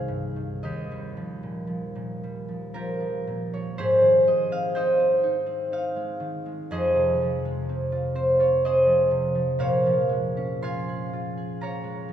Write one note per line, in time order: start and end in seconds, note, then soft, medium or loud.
0.00 0.65 C2 medium
0.00 0.35 D#3 soft
0.00 2.95 A#3 medium
0.00 2.73 C4 medium
0.00 1.42 D#4 medium
0.00 0.68 G#4 medium
0.00 2.45 A#4 medium
0.00 1.40 C5 medium
0.00 1.37 F5 medium
0.00 2.44 G5 medium
0.08 0.67 G2 soft
0.36 0.68 D#3 soft
0.63 3.80 D#2 medium
0.63 2.74 G4 medium
0.63 4.26 D#5 medium
0.92 2.22 G3 medium
1.17 1.66 F3 soft
1.43 1.94 A#2 soft
1.67 2.47 F3 medium
1.95 3.26 A#2 soft
2.23 6.13 G3 soft
2.48 2.99 F3 soft
2.74 4.51 C4 soft
2.74 3.81 F4 medium
2.74 3.78 G4 medium
2.74 3.80 A#4 medium
3.00 3.52 F3 soft
3.27 3.81 A#2 soft
3.53 3.81 F3 soft
3.53 3.94 C#5 medium
3.78 6.74 G#2 medium
3.78 6.74 G4 medium
3.78 6.71 G#4 medium
3.78 4.75 C5 loud
4.01 6.19 D#3 medium
4.27 5.95 G#3 medium
4.27 4.67 D#5 medium
4.52 4.98 C4 medium
4.52 4.92 F5 loud
4.75 5.22 D#4 medium
4.75 6.72 C5 medium
4.75 6.70 D#5 medium
4.75 6.73 G5 loud
5.00 5.45 C4 medium
5.24 5.71 D#4 medium
5.46 7.68 C4 medium
5.72 9.62 D#4 medium
5.72 7.39 F5 loud
5.96 6.45 G#3 medium
6.20 6.73 D#3 medium
6.46 7.44 G#3 soft
6.71 9.63 F2 medium
6.71 8.65 G#4 medium
6.71 8.14 C5 medium
6.71 8.64 D#5 loud
6.95 9.10 C3 medium
7.22 8.85 F3 medium
7.45 10.08 G#3 medium
7.69 8.14 C4 medium
7.92 8.39 F4 medium
8.15 8.64 C4 medium
8.15 8.65 C5 medium
8.39 10.61 F4 medium
8.39 8.79 C#5 medium
8.65 12.13 C4 medium
8.65 10.88 G#4 medium
8.65 9.60 C5 medium
8.65 9.63 D#5 loud
8.86 9.34 F3 medium
9.11 9.62 C3 medium
9.35 9.85 F3 soft
9.59 12.13 A#2 medium
9.59 12.13 C5 medium
9.59 11.62 C#5 medium
9.59 10.63 F5 loud
9.86 12.07 F3 medium
10.09 11.83 G#3 medium
10.37 12.13 C#4 medium
10.62 11.12 F4 medium
10.62 11.62 F5 medium
10.62 12.13 G#5 medium
10.62 12.13 C6 loud
10.89 11.36 G#4 medium
11.13 11.60 F4 medium
11.37 12.13 G#4 medium
11.61 12.13 F4 medium
11.61 12.13 C#5 medium
11.61 12.13 F5 medium
11.61 12.13 A#5 medium
11.84 12.13 G#3 medium
12.09 12.13 F3 soft